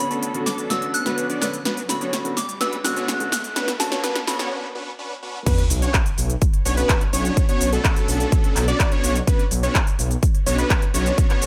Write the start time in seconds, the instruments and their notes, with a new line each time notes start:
Already playing: riser
0.00 grand piano D3 B3 C#4 F#4, synth bell B5
0.11 supersaw synth B3 C#4 D4 F#4 A4, analog synth lead A4, closed hi-hat, shaker
0.23 closed hi-hat, shaker
0.34 grand piano D3 B3 C#4 F#4, closed hi-hat
0.46 synth bell D6, snare, open hi-hat, shaker
0.58 closed hi-hat, shaker
0.70 grand piano D3 B3 C#4 F#4, synth bell E6, snare, closed hi-hat, shaker
0.82 closed hi-hat
0.94 synth bell F#6, open hi-hat, shaker
1.05 grand piano D3 B3 C#4 F#4, supersaw synth B3 C#4 D4 F#4 B4, analog synth lead B4, snare, closed hi-hat, shaker
1.18 closed hi-hat, shaker
1.30 supersaw synth B3 C#4 D4 F#4 D5, analog synth lead D5, closed hi-hat, shaker
1.41 grand piano D3 B3 C#4 B4, synth bell F#6, snare, open hi-hat, shaker
1.53 closed hi-hat, shaker
1.65 supersaw synth B3 C#4 D4 F#4 B4, analog synth lead B4, snare, closed hi-hat, shaker
1.77 closed hi-hat, shaker
1.88 grand piano D3 B3 C#4 F#4, synth bell B5, snare, open hi-hat, shaker
2.01 supersaw synth B3 C#4 D4 F#4 C#5, analog synth lead C#5, closed hi-hat, shaker
2.13 snare, closed hi-hat, shaker
2.24 grand piano D3 B3 C#4 F#4, closed hi-hat
2.37 synth bell D6, snare, open hi-hat, shaker
2.49 closed hi-hat, shaker
2.61 supersaw synth B3 C#4 D4 F#4 B4, analog synth lead B4, synth bell E6, snare, closed hi-hat, shaker
2.73 closed hi-hat
2.84 grand piano D3 B3 C#4 F#4, synth bell F#6, snare, open hi-hat, shaker
2.96 supersaw synth B3 C#4 D4 F#4 C#5, analog synth lead C#5, closed hi-hat, shaker
3.08 snare, closed hi-hat, shaker
3.19 grand piano D3 B3 C#4 F#4, closed hi-hat, shaker
3.32 synth bell F#6, snare, open hi-hat, shaker
3.44 closed hi-hat, shaker
3.56 supersaw synth B3 C#4 D4 F#4 B4, analog synth lead B4, snare, closed hi-hat, shaker
3.68 snare, closed hi-hat, shaker
3.79 grand piano D3 B3 C#4 F#4, synth bell A5, snare, open hi-hat, shaker
3.92 supersaw synth B3 C#4 D4 F#4 C#5, analog synth lead C#5, snare, closed hi-hat, shaker
4.03 supersaw synth B3 C#4 D4 F#4 B4, analog synth lead B4, snare, closed hi-hat, shaker
4.16 snare, closed hi-hat
4.27 grand piano D3 B3 C#4 F#4, synth bell B5, snare, open hi-hat, shaker
4.39 supersaw synth B3 C#4 D4 F#4 C#5, analog synth lead C#5, snare, closed hi-hat, shaker
4.51 supersaw synth B3 C#4 D4 F#4 B4
4.75 supersaw synth B3 C#4 D4 F#4 B4
4.99 supersaw synth B3 C#4 D4 F#4 B4
5.23 supersaw synth B3 C#4 D4 F#4 B4
5.46 supersaw synth B3 C#4 D4 F#4 B4, analog synth lead B4, kick, closed hi-hat, crash, sub drop, shaker
5.58 closed hi-hat
5.70 detuned saw bass B1, open hi-hat, shaker
5.82 supersaw synth B3 C#4 D4 F#4 C#5, analog synth lead C#5, closed hi-hat, shaker
5.94 kick, clap, closed hi-hat, shaker
6.06 closed hi-hat, shaker
6.18 detuned saw bass B1, open hi-hat, shaker
6.30 closed hi-hat, shaker
6.42 kick, closed hi-hat, shaker
6.54 closed hi-hat
6.65 detuned saw bass B1, supersaw synth B3 C#4 D4 F#4 C#5, analog synth lead C#5, open hi-hat, shaker
6.77 supersaw synth B3 C#4 D4 F#4 B4, analog synth lead B4, closed hi-hat, shaker
6.89 kick, clap, closed hi-hat, shaker
7.01 closed hi-hat
7.13 detuned saw bass B1, supersaw synth B3 C#4 D4 F#4 C#5, analog synth lead C#5, open hi-hat, shaker
7.25 closed hi-hat, shaker
7.37 kick, closed hi-hat, shaker
7.49 supersaw synth B3 C#4 D4 F#4 C#5, analog synth lead C#5, closed hi-hat
7.61 detuned saw bass B1, open hi-hat, shaker
7.73 supersaw synth B3 C#4 D4 F#4 A4, analog synth lead A4, closed hi-hat, shaker
7.84 kick, clap, closed hi-hat, shaker
7.96 closed hi-hat, shaker
8.08 detuned saw bass B1, open hi-hat, shaker
8.20 closed hi-hat, shaker
8.32 kick, closed hi-hat, shaker
8.44 closed hi-hat
8.56 detuned saw bass B1, clap, open hi-hat, shaker
8.68 supersaw synth B3 C#4 D4 F#4 D5, analog synth lead D5, closed hi-hat, shaker
8.80 kick, clap, closed hi-hat, shaker
8.92 supersaw synth B3 C#4 D4 F#4 C#5, analog synth lead C#5, closed hi-hat
9.03 detuned saw bass B1, open hi-hat, shaker
9.16 closed hi-hat, shaker
9.27 supersaw synth B3 C#4 D4 F#4 B4, analog synth lead B4, kick, closed hi-hat, shaker
9.39 closed hi-hat
9.51 detuned saw bass B1, open hi-hat, shaker
9.63 supersaw synth B3 C#4 D4 F#4 C#5, analog synth lead C#5, closed hi-hat, shaker
9.75 kick, clap, closed hi-hat, shaker
9.87 closed hi-hat, shaker
9.99 detuned saw bass B1, open hi-hat, shaker
10.11 closed hi-hat, shaker
10.23 kick, closed hi-hat, shaker
10.35 closed hi-hat
10.46 detuned saw bass B1, supersaw synth B3 C#4 D4 F#4 C#5, analog synth lead C#5, open hi-hat, shaker
10.58 supersaw synth B3 C#4 D4 F#4 B4, analog synth lead B4, closed hi-hat, shaker
10.70 kick, clap, closed hi-hat, shaker
10.82 closed hi-hat
10.94 detuned saw bass B1, supersaw synth B3 C#4 D4 F#4 C#5, analog synth lead C#5, open hi-hat, shaker
11.06 closed hi-hat, shaker
11.18 kick, closed hi-hat, shaker
11.30 supersaw synth B3 C#4 D4 F#4 C#5, analog synth lead C#5, clap, closed hi-hat
11.42 detuned saw bass B1, open hi-hat, shaker